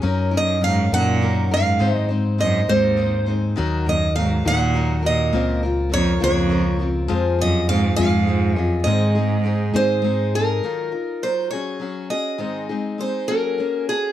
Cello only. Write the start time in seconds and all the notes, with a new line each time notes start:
0.37 F#2
0.65 G#2
0.95 A#2
1.53 G#2
1.95 F#2
2.41 F#2
2.70 D#2
3.86 F#2
4.17 G#2
4.46 A#2
5.06 A#2
5.93 F2
6.23 F2
7.41 F#2
7.68 G#2
7.99 G#2
8.60 F#2
8.84 G#2